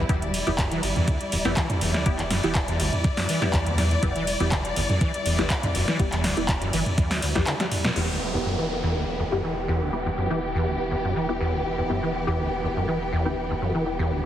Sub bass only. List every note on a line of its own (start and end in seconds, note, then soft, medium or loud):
0.09 0.42 E1 loud
0.47 0.79 E1 loud
0.83 0.93 G1 loud
1.32 1.42 D1 medium
1.45 1.54 G1 loud
1.81 1.91 E1 medium
2.06 2.39 E1 loud
2.44 2.76 E1 loud
2.80 2.90 G1 loud
3.67 3.99 E2 loud
4.03 4.36 E1 loud
4.40 4.72 E1 loud
4.76 4.87 G1 loud
5.26 5.36 D1 medium
5.39 5.48 G1 medium
5.75 5.85 E1 medium
6.00 6.32 E1 medium
6.37 6.69 E1 loud
6.73 6.83 G1 loud
7.35 7.44 B1 medium
7.96 14.25 E1 medium